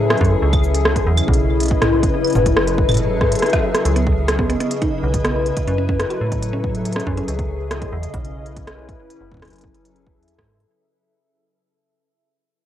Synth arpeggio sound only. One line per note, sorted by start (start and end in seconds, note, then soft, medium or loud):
3.96 4.04 B3 loud
4.39 4.46 B3 medium
4.50 4.54 B3 loud
4.60 4.70 B3 loud
4.82 4.89 D#4 loud
5.25 5.32 B3 loud
5.67 5.75 C#4 medium
5.78 5.83 C#4 loud
5.89 5.99 C#4 loud
6.10 6.18 F#4 loud
6.53 6.61 C#4 loud
6.96 7.04 C#4 medium
7.07 7.11 C#4 loud
7.17 7.28 C#4 loud